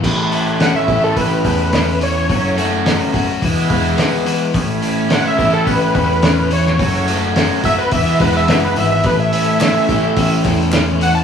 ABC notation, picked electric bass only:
X:1
M:4/4
L:1/16
Q:1/4=107
K:A
V:1 name="Picked electric bass" clef=bass
A,,,6 A,,,2 A,,,2 E,,6 | F,,,6 F,,, z E,,, z E,,,2 z4 | A,,,6 A,,,2 A,,,2 E,,6 | F,,,6 F,,, z E,,, z E,,,2 F,,,2 G,,,2 |
A,,,6 A,,,2 A,,,2 E,,6 |]